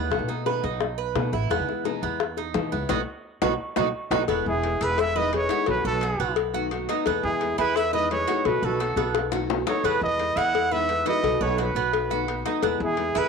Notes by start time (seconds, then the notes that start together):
Already playing: G#3 B3 E4
0.10 B1 B2 D#3 A3 B3 F#4, high bongo
0.19 B2
0.28 A3 B3 D#4 F#4, high bongo
0.46 B2 D#3 A3 B3 F#4 B4, high bongo
0.63 B1 A3 B3 D#4 F#4, high bongo
0.81 muted nylon-string guitar stroke, high bongo
0.98 B4
1.15 B2 D#3 A3 B3 F#4, high bongo, low bongo
1.32 A1 A3 B3 E4 F#4, high bongo
1.50 E2 B2 D#3 G#3 B3 E4, high bongo
1.59 E3
1.68 G#3 B3 E4, high bongo
1.84 B2 D#3 G#3 B3 D#4 E4, high bongo
2.02 E2 G#3 B3 E4
2.20 muted nylon-string guitar stroke, high bongo
2.37 D#4, high bongo
2.54 B2 D#3 E3 G#3 B3 E4, high bongo, low bongo
2.72 C#2 G#3 B3 E4, high bongo
2.89 B1 F#3 A3 B3 D#4 F#4, low bongo
3.42 B1 F#3 A3 B3 D#4 F#4, low bongo
3.76 B1 F#3 A3 B3 D#4 F#4, low bongo
4.11 B1 F#3 A3 B3 D#4 F#4, low bongo
4.27 E1 B2 G#3 B3 E4, cowbell
4.46 E1 E4 G#4
4.63 G#3 B3 E4, cowbell
4.81 E1 E4 G#4 B4, cowbell
4.98 B4 E5, muted nylon-string guitar stroke, cowbell
5.15 D#3 G#3 B3 E4 B4 D#5
5.32 D#3 G#3 B3 E4 G#4 C#5, cowbell
5.49 D#3 G#3 B3 E4 F#4, cowbell
5.66 B1 B2 D#3 A3 B3 F#4 B4, cowbell
5.84 B1 F#4 A4 B4
6.01 D#3 A3 B3 F#4, cowbell
6.20 B1 B3
6.36 muted nylon-string guitar stroke, cowbell
6.54 D#3 A3 B3 F#4
6.71 D#3 A3 B3 F#4, cowbell
6.89 D#3 A3 B3 D#4 F#4, cowbell
7.06 E2 B2 G#3 B3 E4, cowbell
7.23 E2 E4 G#4
7.41 G#3 B3 E4, cowbell
7.58 E2 E4 G#4 B4, cowbell
7.76 B4 E5, muted nylon-string guitar stroke, cowbell
7.93 D#3 G#3 B3 E4 B4 D#5
8.10 D#3 G#3 B3 E4 G#4 C#5, cowbell
8.27 D#3 G#3 B3 E4 F#4, cowbell
8.45 B1 B2 D#3 A3 B3 F#4 B4, cowbell
8.62 B1 F#4 A4 B4
8.80 D#3 A3 B3 F#4, cowbell
8.96 B1 B3, high bongo
9.14 muted nylon-string guitar stroke, cowbell, high bongo
9.32 D#3 A3 B3 F#4, low bongo
9.49 D#3 A3 B3 F#4, cowbell, low bongo
9.66 D#3 A3 B3 D#4 F#4 A4 C#5, cowbell, low bongo
9.84 E2 B2 G#3 B3 E4 G#4 B4, cowbell
10.01 E2 B4 D#5
10.19 G#3 B3 E4, cowbell
10.36 E2 E4 D#5 F#5, cowbell
10.54 muted nylon-string guitar stroke, cowbell
10.71 D#3 G#3 B3 E4 B4 E5
10.88 D#3 G#3 B3 E4, cowbell
11.05 D#3 G#3 B3 E4 F#4 B4 D#5, cowbell
11.23 B1 B2 D#3 A3 B3 F#4, cowbell
11.41 B1 A4 B4 C#5
11.58 D#3 A3 B3 F#4 B4, cowbell
11.75 B1 B3
11.93 muted nylon-string guitar stroke, cowbell
12.10 D#3 A3 B3 F#4
12.27 D#3 A3 B3 F#4, cowbell
12.45 D#3 A3 B3 D#4 F#4, cowbell
12.62 E2 B2 G#3 B3 E4, cowbell
12.80 E2 E4 G#4
12.97 G#3 B3 E4, cowbell
13.15 E2 E4 G#4 B4, cowbell